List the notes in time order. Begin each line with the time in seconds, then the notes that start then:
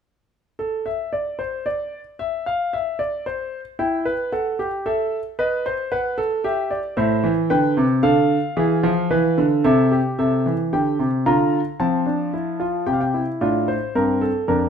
0.59 A4
0.86 E5
1.13 D5
1.39 C5
1.66 D5
2.19 E5
2.46 F5
2.73 E5
2.99 D5
3.26 C5
3.79 E4 G5
4.05 B4
4.32 A4 F#5
4.59 G4
4.86 A4 E5
5.39 B4 D#5
5.66 C5
5.92 B4 F#5
6.18 A4
6.44 G4 E5
6.71 D5
6.97 A2 C5 E5
7.24 E3
7.50 D3 B4 G5
7.77 C3
8.03 D3 A4 F5
8.57 E3 G#4
8.83 F3
9.11 E3 B4
9.38 D3
9.64 C3 A4 E5
9.92 G4
10.19 C3 A4 E5
10.46 E3
10.73 D3 G4 G5
10.99 C3
11.26 D3 F4 A#5
11.80 F3 C4 A5
12.06 D4
12.33 E4
12.60 F4
12.86 C3 G4 G5
12.93 F5
13.01 G5
13.14 E4
13.41 A2 D4 F4
13.68 C5
13.95 G2 C4 A#4
14.21 A4
14.48 F2 D4 A#4